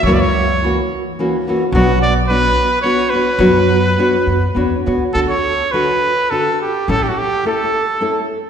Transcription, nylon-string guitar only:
X:1
M:3/4
L:1/8
Q:1/4=107
K:Bm
V:1 name="Nylon-string guitar"
[F,,C,E,^A,CF] z [E,A,CF] z [E,A,CF] [E,A,CF] | [B,,F,B,DFc] z [B,DFc] z [B,DFc] [B,DFc] | [B,,F,B,DFc] z [B,DFc] z [B,DFc] [B,DFc] | [K:D] [D,DFA] z [D,DFA] z [D,DFA] z |
[A,,A,CEA] z [A,CEA] z [A,CEA] z |]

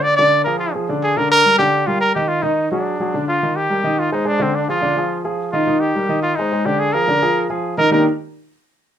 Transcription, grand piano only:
X:1
M:4/4
L:1/8
Q:1/4=213
K:Eb
V:1 name="Grand piano"
[D,Dd] [D,Dd]2 [F,FA]2 [F,FA] [D,Dd]2 | [D,Dd]2 [G,GB] [D,Dd]2 [G,GB]2 [E,Ee]- | [E,Ee] [E,Ee]2 [_G,_GA]2 [^F,^FA] [D,Dd]2 | [E,Ee]2 [G,GB] [E,Ee]2 [A,Ac] [A,Ac] [D,Dd]- |
[D,Dd] [F,FA] [D,Dd] [F,FA]2 [F,FA]2 [E,Ee] | [E,Ee]2 [G,GB] [E,Ee]2 [A,Ac] [A,Ac] [D,Dd]- | [D,Dd] [F,FA] [D,Dd] [F,FA]2 [F,FA]2 [E,Ee] | [E,B,DEGB] z6 z |]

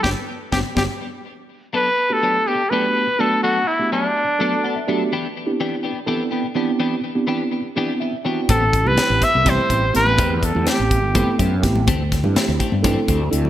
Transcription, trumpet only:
X:1
M:7/8
L:1/16
Q:1/4=124
K:G
V:1 name="Trumpet"
G2 z2 G2 G2 z6 | B3 A3 G2 B4 A2 | F2 E2 D8 z2 | z12 z2 |
z12 z2 | A3 B3 e2 c4 B2- | B3/2 B/2 A2 G6 z4 | z12 z2 |]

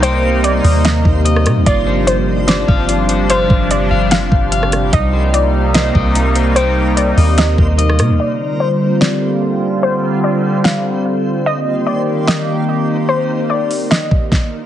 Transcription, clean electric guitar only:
X:1
M:4/4
L:1/8
Q:1/4=147
K:Cm
V:1 name="Clean electric guitar"
[Eceg]3 e3 e2 | F c3 c f F c | f3 f3 f2 | E c3 c e E c |
g3 e3 e2 | z8 | z8 | z8 |
z8 |]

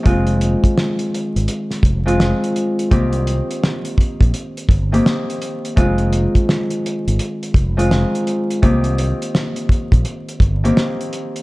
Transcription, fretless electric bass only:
X:1
M:4/4
L:1/16
Q:"Swing 16ths" 1/4=84
K:Fm
V:1 name="Fretless electric bass" clef=bass
F,,,3 z4 A,,, z2 F,,,3 z3 | C,,3 z4 B,,, z2 G,,,2 z4 | F,,,3 z4 A,,, z2 F,,,3 z3 | C,,3 z4 B,,, z2 G,,,2 z4 |]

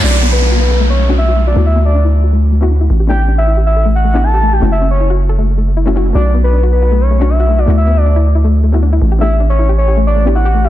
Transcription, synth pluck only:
X:1
M:4/4
L:1/16
Q:1/4=157
K:Bm
V:1 name="Synth pluck"
[A,CDF]8- [A,CDF]3 [A,CDF] z4 | [A,B,EF]8- [A,B,EF]3 [A,B,EF] z4 | [B,DEG]8- [B,DEG]3 [B,DEG] z4 | [A,CEF]8- [A,CEF]3 z2 [A,CEF] [A,CEF]2 |
[A,CDF]8- [A,CDF]3 [A,CDF] z4 | [A,B,EF]8- [A,B,EF]3 [A,B,EF] z4 | [B,DEG]8- [B,DEG]3 [B,DEG] z4 |]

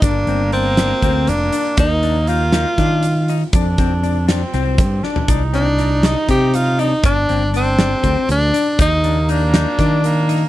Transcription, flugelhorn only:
X:1
M:7/8
L:1/8
Q:1/4=120
K:Gphr
V:1 name="Flugelhorn"
B,6- B, | B,6 z | D3 C3 D | E6- E |
D6 z | B,4- B, B,2 |]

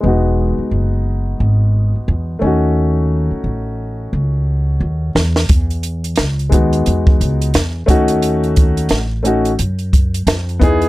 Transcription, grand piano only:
X:1
M:4/4
L:1/8
Q:"Swing 16ths" 1/4=88
K:E
V:1 name="Grand piano"
[G,B,DF]6- [G,B,DF] [A,CDF]- | [A,CDF]6- [A,CDF] z | z3 [G,B,DF]3 z [A,CDF]- | [A,CDF]2 z [A,CDF] z3 [B,DEG] |]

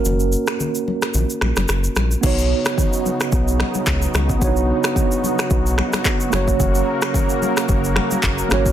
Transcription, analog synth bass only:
X:1
M:4/4
L:1/16
Q:"Swing 16ths" 1/4=110
K:B
V:1 name="Analog synth bass" clef=bass
F,,,3 z4 z A,,, z A,,, F,,, F,,,2 A,,,2 | B,,,3 z4 z B,,,3 z C,,2 C,,2 | B,,,3 z4 z B,,,3 z3 F,,,2- | F,,,3 z4 z F,,,3 z F,,,2 G,,,2 |]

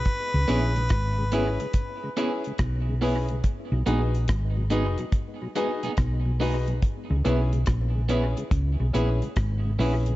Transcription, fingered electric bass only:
X:1
M:4/4
L:1/16
Q:"Swing 16ths" 1/4=71
K:C#dor
V:1 name="Fingered electric bass" clef=bass
z C,, A,,,2 G,,,3 z4 z B,,,4 | z B,,, A,,,2 G,,,3 z4 z B,,,4 | z C,, B,,,2 A,,,3 z C,, B,,, A,,, z G,,,2 A,,,2 |]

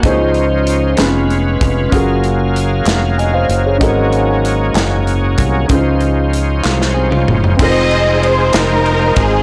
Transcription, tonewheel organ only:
X:1
M:6/8
L:1/8
Q:3/8=63
K:Db
V:1 name="Tonewheel organ"
[_F,=F,DEc]3 [A,DF_c]3 | [G,B,Af]6 | [G,B,D=GA]6 | [E,F,DEc]6 |
[A,CEFc]6 |]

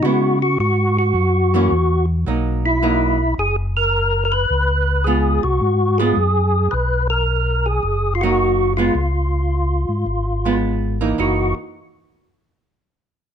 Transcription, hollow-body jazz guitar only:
X:1
M:4/4
L:1/8
Q:"Swing" 1/4=108
K:F#
V:1 name="Hollow-body jazz guitar"
[G,B,=E] z4 [=E,A,C] z2 | [F,A,D]2 [F,A,D] z4 z | z2 [G,B,E] z2 [G,B,E] z2 | z4 z [F,A,D]2 [G,B,E] |
z4 z [G,B,E]2 [=E,A,D] | [=E,A,D] z6 z |]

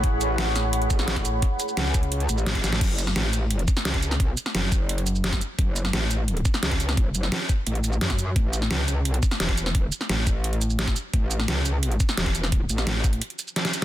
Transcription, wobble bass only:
X:1
M:4/4
L:1/8
Q:1/4=173
K:F#m
V:1 name="Wobble bass" clef=bass
A,,,8 | z2 C,,3 A,,,3 | F,,,2 A,,,3 z C,,2- | C,, z F,,,4- F,,, z |
F,,,2 A,,,3 z C,,2- | C,, F,,, z2 A,,,2 F,,2 | A,,,2 C,,3 z E,,,2- | E,,, z A,,,4- A,,, z |
A,,,2 C,,3 z E,,,2- | E,,, A,,,3 z4 |]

